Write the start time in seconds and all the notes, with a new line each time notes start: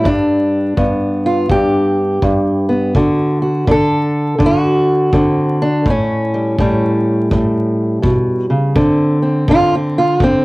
Already playing: G3
0.04 G2 D4, kick
0.77 G2 B3, kick
1.26 F4
1.50 G2 G4, kick
2.22 G2, kick
2.69 B3
2.95 D3 F#4, kick
3.42 F#4
3.67 D3 A4, kick
4.38 D3, kick
4.46 F#4
5.13 D3 C4, kick
5.62 D4
5.86 A2, kick
5.90 C#4
6.34 G3
6.59 A2 G3, kick
7.31 A2, kick
8.02 B2, kick
8.50 C#3
8.76 D3 C4, kick
9.22 C4
9.48 D3 F4, kick
9.75 C4
9.98 F4
10.20 D3 C4, kick